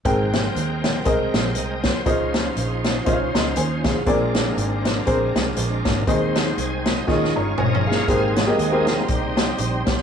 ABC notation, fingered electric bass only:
X:1
M:4/4
L:1/8
Q:"Swing" 1/4=120
K:Ab
V:1 name="Fingered electric bass" clef=bass
A,,,2 E,,2 C,, B,,, C,,2 | D,,2 B,,,2 C,, D,, E,,2 | B,,,2 A,,,2 B,,, C,, B,,, A,,, | E,,2 C,,2 E,, G,,, G,,,2 |
A,,,2 E,,2 C,,2 B,,, C,, |]